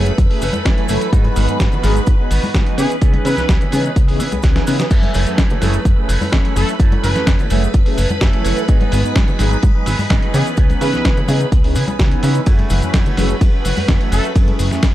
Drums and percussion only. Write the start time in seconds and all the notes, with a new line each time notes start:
0.06 closed hi-hat, maracas
0.18 kick, closed hi-hat, maracas
0.31 open hi-hat
0.42 open hi-hat, maracas
0.53 closed hi-hat, high conga, maracas
0.65 kick, snare, closed hi-hat, maracas
0.78 closed hi-hat
0.88 open hi-hat, maracas
1.01 closed hi-hat, maracas
1.13 kick, closed hi-hat, maracas
1.24 closed hi-hat, high conga
1.36 open hi-hat, maracas
1.48 closed hi-hat, maracas
1.60 kick, snare, closed hi-hat, maracas
1.72 closed hi-hat, low conga, maracas
1.83 snare, open hi-hat, high conga, maracas
1.96 closed hi-hat, maracas
2.07 kick, closed hi-hat, maracas
2.31 open hi-hat, maracas
2.43 high conga, maracas
2.54 kick, snare, closed hi-hat, low conga, maracas
2.67 closed hi-hat
2.78 open hi-hat, maracas
2.90 closed hi-hat, maracas
3.02 kick, closed hi-hat, maracas
3.13 closed hi-hat, high conga
3.25 open hi-hat, maracas
3.37 snare, closed hi-hat, maracas
3.49 kick, snare, closed hi-hat, maracas
3.61 closed hi-hat, low conga, maracas
3.72 open hi-hat, high conga, maracas
3.85 closed hi-hat, maracas
3.96 kick, closed hi-hat, maracas
4.08 open hi-hat
4.20 open hi-hat, maracas
4.32 closed hi-hat, high conga, maracas
4.43 kick, snare, closed hi-hat, maracas
4.56 snare, closed hi-hat
4.67 open hi-hat, maracas
4.79 snare, closed hi-hat, maracas
4.91 kick, closed hi-hat, crash, maracas
5.03 closed hi-hat, high conga
5.14 open hi-hat, maracas
5.27 closed hi-hat, maracas
5.38 kick, snare, closed hi-hat, maracas
5.50 closed hi-hat, low conga, maracas
5.62 snare, open hi-hat, high conga, maracas
5.74 maracas
5.85 kick, closed hi-hat, maracas
6.09 open hi-hat, maracas
6.21 high conga, maracas
6.32 kick, snare, closed hi-hat, low conga, maracas
6.45 closed hi-hat
6.56 open hi-hat, maracas
6.68 closed hi-hat, maracas
6.80 kick, closed hi-hat, maracas
6.92 closed hi-hat, high conga
7.04 open hi-hat, maracas
7.16 snare, closed hi-hat, maracas
7.27 kick, snare, closed hi-hat, maracas
7.39 closed hi-hat, low conga, maracas
7.50 open hi-hat, high conga, maracas
7.63 closed hi-hat, maracas
7.74 kick, closed hi-hat, maracas
7.86 open hi-hat
7.98 open hi-hat, maracas
8.10 closed hi-hat, high conga, maracas
8.21 kick, snare, closed hi-hat, maracas
8.33 closed hi-hat
8.45 open hi-hat, maracas
8.57 closed hi-hat, maracas
8.68 kick, closed hi-hat, maracas
8.81 closed hi-hat, high conga
8.92 open hi-hat, maracas
9.04 closed hi-hat, maracas
9.16 kick, snare, closed hi-hat, maracas
9.28 closed hi-hat, low conga, maracas
9.39 snare, open hi-hat, high conga, maracas
9.51 closed hi-hat, maracas
9.63 kick, closed hi-hat, maracas
9.86 open hi-hat, maracas
9.99 high conga, maracas
10.10 kick, snare, closed hi-hat, low conga, maracas
10.22 closed hi-hat
10.34 open hi-hat, maracas
10.46 closed hi-hat, maracas
10.57 kick, closed hi-hat, maracas
10.70 closed hi-hat, high conga, maracas
10.81 open hi-hat, maracas
10.93 snare, closed hi-hat, maracas
11.05 kick, snare, closed hi-hat, maracas
11.17 closed hi-hat, low conga, maracas
11.28 open hi-hat, high conga, maracas
11.40 closed hi-hat, maracas
11.52 kick, closed hi-hat, maracas
11.64 open hi-hat
11.75 open hi-hat, maracas
11.88 closed hi-hat, high conga, maracas
11.99 kick, snare, closed hi-hat, maracas
12.11 closed hi-hat
12.23 open hi-hat, maracas
12.35 closed hi-hat, maracas
12.46 kick, closed hi-hat, ride, maracas
12.59 closed hi-hat, high conga
12.70 open hi-hat, maracas
12.82 closed hi-hat, maracas
12.94 kick, snare, closed hi-hat, ride, maracas
13.06 closed hi-hat, low conga, maracas
13.17 snare, open hi-hat, high conga, maracas
13.30 closed hi-hat, maracas
13.41 kick, closed hi-hat, ride, maracas
13.65 open hi-hat, maracas
13.77 high conga, maracas
13.88 kick, snare, ride, low conga, maracas
14.01 closed hi-hat
14.12 open hi-hat, maracas
14.24 closed hi-hat, maracas
14.36 kick, closed hi-hat, ride, maracas
14.48 closed hi-hat, high conga
14.59 open hi-hat, maracas
14.71 snare, closed hi-hat, maracas
14.83 kick, snare, closed hi-hat, ride, maracas